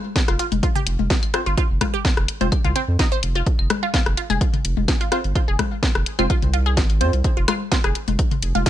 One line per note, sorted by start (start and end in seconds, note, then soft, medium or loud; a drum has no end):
0.16 kick loud
0.16 snare loud
0.16 closed hi-hat medium
0.28 0.38 F1 loud
0.28 0.36 F4 medium
0.28 cross-stick medium
0.28 closed hi-hat soft
0.39 0.45 F4 loud
0.39 closed hi-hat loud
0.52 0.61 F1 medium
0.52 closed hi-hat soft
0.52 high tom medium
0.63 0.67 F4 medium
0.63 kick loud
0.63 closed hi-hat medium
0.75 0.81 G4 loud
0.75 closed hi-hat soft
0.75 mid tom medium
0.87 0.97 F1 loud
0.87 closed hi-hat loud
0.99 1.08 F1 loud
0.99 high tom medium
1.10 kick loud
1.10 snare loud
1.10 closed hi-hat medium
1.23 closed hi-hat soft
1.23 claves medium
1.34 1.41 C4 medium
1.34 1.41 F4 medium
1.34 1.41 C5 medium
1.34 cross-stick medium
1.34 closed hi-hat loud
1.46 1.56 G1 medium
1.46 1.54 F4 medium
1.46 closed hi-hat soft
1.58 1.63 F4 loud
1.58 kick loud
1.58 closed hi-hat medium
1.70 1.79 F1 loud
1.81 1.85 F4 medium
1.81 kick medium
1.81 cross-stick medium
1.81 closed hi-hat loud
1.81 high tom medium
1.94 1.99 G4 loud
2.05 kick loud
2.05 snare medium
2.05 closed hi-hat medium
2.17 2.27 F1 loud
2.17 cross-stick medium
2.17 closed hi-hat soft
2.28 closed hi-hat loud
2.41 2.50 F1 medium
2.41 2.47 C4 medium
2.41 2.47 F4 medium
2.41 2.47 C5 loud
2.41 closed hi-hat soft
2.41 high tom medium
2.52 kick loud
2.52 closed hi-hat medium
2.52 claves medium
2.65 2.74 C2 medium
2.65 2.72 F4 medium
2.65 closed hi-hat soft
2.65 mid tom medium
2.76 2.84 C4 loud
2.76 closed hi-hat loud
2.88 2.97 F2 loud
2.99 3.08 D#4 medium
2.99 kick loud
2.99 snare medium
2.99 closed hi-hat medium
3.12 3.19 C5 loud
3.12 closed hi-hat soft
3.23 3.43 F1 medium
3.23 closed hi-hat medium
3.35 3.41 F4 medium
3.35 closed hi-hat soft
3.47 kick loud
3.47 closed hi-hat medium
3.59 3.68 F1 loud
3.59 claves medium
3.70 cross-stick medium
3.70 closed hi-hat loud
3.70 high tom medium
3.83 3.90 F4 medium
3.94 4.00 F4 loud
3.94 kick loud
3.94 snare medium
3.94 closed hi-hat medium
4.06 4.16 F1 loud
4.06 cross-stick medium
4.06 closed hi-hat soft
4.17 4.21 F4 medium
4.17 closed hi-hat loud
4.30 4.39 F1 medium
4.30 4.38 G#4 medium
4.30 closed hi-hat soft
4.30 high tom medium
4.41 kick loud
4.41 closed hi-hat medium
4.53 closed hi-hat soft
4.53 mid tom medium
4.65 4.75 F1 loud
4.65 closed hi-hat loud
4.77 4.86 F1 loud
4.77 high tom medium
4.88 kick loud
4.88 snare medium
4.88 closed hi-hat medium
4.88 claves medium
5.01 5.08 F4 medium
5.01 closed hi-hat soft
5.12 5.19 C4 medium
5.12 5.18 F4 loud
5.12 5.19 F4 medium
5.12 5.19 C5 medium
5.12 cross-stick medium
5.12 closed hi-hat medium
5.24 5.34 G1 medium
5.24 closed hi-hat soft
5.35 5.39 F4 medium
5.35 kick loud
5.35 closed hi-hat medium
5.48 5.57 F1 loud
5.48 5.56 G#4 medium
5.59 kick medium
5.59 cross-stick medium
5.59 closed hi-hat medium
5.59 high tom medium
5.83 kick loud
5.83 snare medium
5.83 closed hi-hat medium
5.95 6.04 F1 loud
5.95 cross-stick medium
5.95 closed hi-hat soft
6.06 closed hi-hat medium
6.19 6.28 F1 medium
6.19 6.25 C4 loud
6.19 6.25 F4 medium
6.19 6.27 F4 medium
6.19 6.25 C5 loud
6.19 closed hi-hat soft
6.19 high tom medium
6.19 claves medium
6.30 6.36 F4 loud
6.30 kick loud
6.30 closed hi-hat medium
6.42 6.79 C2 medium
6.42 closed hi-hat soft
6.42 mid tom medium
6.54 6.57 F4 medium
6.54 closed hi-hat medium
6.66 6.74 G#4 medium
6.77 7.02 G#1 loud
6.77 kick loud
6.77 snare medium
6.77 closed hi-hat medium
6.90 closed hi-hat soft
7.01 7.11 F2 loud
7.01 7.12 C4 medium
7.01 7.12 F4 medium
7.01 7.12 C5 loud
7.01 closed hi-hat medium
7.13 7.23 C2 medium
7.13 closed hi-hat soft
7.24 kick loud
7.24 closed hi-hat medium
7.37 7.46 F1 loud
7.37 7.45 F4 medium
7.48 7.54 F4 loud
7.48 cross-stick medium
7.48 closed hi-hat medium
7.48 high tom medium
7.48 claves medium
7.72 7.75 F4 medium
7.72 kick loud
7.72 snare medium
7.72 closed hi-hat medium
7.84 7.93 F1 loud
7.84 7.92 G#4 medium
7.84 cross-stick medium
7.84 closed hi-hat soft
7.95 closed hi-hat medium
8.08 8.17 F1 medium
8.08 closed hi-hat soft
8.08 high tom medium
8.19 kick loud
8.19 closed hi-hat medium
8.31 closed hi-hat soft
8.31 mid tom medium
8.42 8.53 F1 loud
8.42 closed hi-hat medium
8.55 8.64 F1 medium
8.55 8.63 F4 medium
8.55 high tom medium
8.66 8.70 F4 loud
8.66 kick loud
8.66 snare loud
8.66 closed hi-hat medium